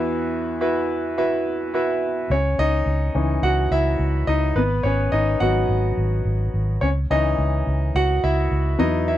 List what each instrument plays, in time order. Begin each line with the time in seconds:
Already playing: grand piano E2 E3 E4 F#4 B4 E5
0.61 grand piano E4 F#4 B4 E5
1.17 grand piano E4 F#4 B4 E5
1.74 grand piano E4 F#4 B4 E5
2.30 fingered electric bass C#2, grand piano C#4 C#5
2.58 fingered electric bass C#2, grand piano D#4 D#5
2.86 fingered electric bass C#2
3.15 fingered electric bass C#2, grand piano E3 C#4 D#4
3.43 fingered electric bass C#2, grand piano F#4 F#5
3.71 fingered electric bass C#2, grand piano E4 E5
3.99 fingered electric bass C#2
4.27 fingered electric bass C#2, grand piano D#4 D#5
4.55 fingered electric bass G#1, grand piano B3 B4
4.83 fingered electric bass G#1, grand piano C#4 C#5
5.12 fingered electric bass G#1, grand piano D#4 D#5
5.40 fingered electric bass G#1, grand piano F#3 B3 D#4 F#4 F#5
5.69 fingered electric bass G#1
5.97 fingered electric bass G#1
6.25 fingered electric bass G#1
6.54 fingered electric bass G#1
6.81 fingered electric bass C#2, grand piano C#4 C#5
7.10 fingered electric bass C#2, grand piano E3 C#4 D#4 D#5
7.38 fingered electric bass C#2
7.67 fingered electric bass C#2
7.95 fingered electric bass C#2, grand piano F#4 F#5
8.23 fingered electric bass C#2, grand piano E4 E5
8.51 fingered electric bass C#2
8.78 fingered electric bass E2, grand piano F#3 B3 D#4 E4 D#5
9.08 grand piano E4 E5